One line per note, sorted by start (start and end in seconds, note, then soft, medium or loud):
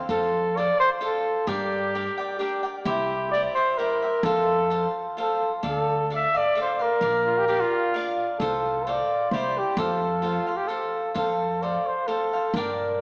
0.09 0.69 F2 medium
0.09 0.55 F4 medium
0.09 0.56 A4 medium
0.09 0.58 A4 medium
0.09 0.56 C5 medium
0.09 0.56 F5 medium
0.57 1.00 F4 medium
0.57 1.00 A4 soft
0.57 1.00 C5 soft
0.57 0.79 D5 medium
0.57 1.01 F5 medium
0.80 0.89 C5 medium
1.01 1.46 F4 medium
1.01 1.47 A4 medium
1.01 1.48 C5 medium
1.01 1.48 F5 medium
1.05 1.49 A4 medium
1.47 2.07 G2 medium
1.47 1.93 D4 medium
1.47 2.38 G4 medium
1.47 1.94 A#4 medium
1.47 1.94 D5 medium
1.47 1.95 G5 medium
1.95 2.18 D4 soft
1.95 2.18 A#4 medium
1.95 2.18 D5 medium
1.95 2.16 G5 medium
2.18 2.39 A#4 soft
2.18 2.40 D5 soft
2.18 2.40 G5 medium
2.39 2.63 D4 medium
2.39 2.72 G4 medium
2.39 2.64 A#4 medium
2.39 2.63 D5 medium
2.39 2.62 G5 medium
2.63 2.86 A#4 soft
2.63 2.86 D5 soft
2.63 2.85 G5 soft
2.85 3.45 C2 medium
2.85 3.31 E4 medium
2.85 3.28 G4 medium
2.85 3.32 G4 medium
2.85 3.34 C5 medium
2.85 3.32 E5 medium
3.31 3.57 E4 medium
3.31 3.56 G4 soft
3.31 3.55 C5 medium
3.31 3.42 D5 medium
3.31 3.54 E5 medium
3.54 3.78 G4 soft
3.54 3.79 C5 medium
3.54 3.78 C5 soft
3.54 3.78 E5 soft
3.78 4.02 E4 medium
3.78 4.02 G4 medium
3.78 4.25 A#4 medium
3.78 4.02 C5 medium
3.78 4.01 E5 medium
4.02 4.25 G4 soft
4.02 4.24 C5 soft
4.02 4.24 E5 soft
4.23 4.84 F2 loud
4.23 4.70 F4 medium
4.23 4.90 A4 medium
4.23 4.71 A4 medium
4.23 4.70 C5 medium
4.23 4.72 F5 medium
4.70 5.16 F4 medium
4.70 5.17 A4 medium
4.70 5.17 C5 medium
4.70 5.18 F5 medium
5.17 5.62 F4 soft
5.17 5.62 A4 medium
5.17 5.51 A4 medium
5.17 5.63 C5 medium
5.17 5.63 F5 medium
5.63 6.23 D2 medium
5.63 6.10 D4 medium
5.63 6.09 A4 medium
5.63 6.11 D5 medium
5.63 6.11 F5 medium
5.68 6.09 A4 medium
6.10 6.34 D4 soft
6.10 6.34 A4 soft
6.10 6.33 D5 medium
6.10 6.33 F5 soft
6.15 6.38 E5 medium
6.34 6.54 A4 soft
6.34 6.55 D5 soft
6.34 6.57 D5 medium
6.34 6.56 F5 soft
6.55 6.79 D4 soft
6.55 6.79 A4 medium
6.55 6.79 D5 soft
6.55 6.78 F5 medium
6.61 6.83 C5 medium
6.79 7.02 A4 soft
6.79 8.18 A#4 medium
6.79 7.01 D5 soft
6.79 7.01 F5 soft
7.01 7.61 A#1 medium
7.01 7.47 D4 medium
7.01 7.47 A#4 medium
7.01 7.48 D5 medium
7.01 7.48 F5 medium
7.26 7.40 F4 medium
7.38 7.47 G4 medium
7.48 7.93 D4 soft
7.48 7.62 G4 medium
7.48 7.93 A#4 medium
7.48 7.94 D5 medium
7.48 7.95 F5 medium
7.61 8.29 F4 medium
7.94 8.40 D4 medium
7.94 8.40 A#4 medium
7.94 8.41 D5 medium
7.94 8.41 F5 medium
8.39 8.99 C2 medium
8.39 8.86 F4 medium
8.39 8.90 A4 medium
8.39 8.86 A4 medium
8.39 8.87 C5 medium
8.39 8.87 F5 medium
8.87 9.32 F4 medium
8.87 9.32 A4 medium
8.87 9.34 C5 medium
8.87 9.31 D5 medium
8.87 9.33 F5 medium
9.31 9.61 C2 medium
9.31 9.78 E4 medium
9.31 9.78 G4 medium
9.31 9.59 C5 medium
9.31 9.78 C5 medium
9.31 9.79 D5 medium
9.58 9.78 G4 medium
9.77 10.37 F2 loud
9.77 10.22 F4 medium
9.77 10.23 A4 medium
9.77 10.66 A4 medium
9.77 10.22 C5 medium
9.77 10.24 F5 medium
10.22 10.47 F4 soft
10.22 10.58 F4 medium
10.22 10.47 A4 medium
10.22 10.47 C5 medium
10.22 10.45 F5 medium
10.47 10.68 A4 soft
10.47 10.69 C5 soft
10.47 10.69 F5 soft
10.57 10.69 G4 medium
10.68 11.13 F4 medium
10.68 11.15 A4 medium
10.68 11.14 A4 medium
10.68 11.15 C5 medium
10.68 11.14 F5 medium
11.14 11.76 F2 medium
11.14 11.61 F4 medium
11.14 11.61 A4 medium
11.14 11.65 A4 medium
11.14 11.62 C5 medium
11.14 11.62 F5 medium
11.62 12.07 F4 medium
11.62 12.07 A4 soft
11.62 12.07 C5 soft
11.62 11.88 D5 medium
11.62 12.07 F5 soft
11.86 12.09 C5 medium
12.07 12.32 F4 medium
12.07 12.56 A4 medium
12.07 12.32 A4 medium
12.07 12.32 C5 medium
12.07 12.32 F5 medium
12.33 12.55 A4 soft
12.33 12.55 C5 soft
12.33 12.55 F5 soft
12.54 13.01 G2 medium
12.54 13.00 D4 medium
12.54 13.01 A#4 medium
12.54 13.01 D5 medium
12.54 13.01 G5 medium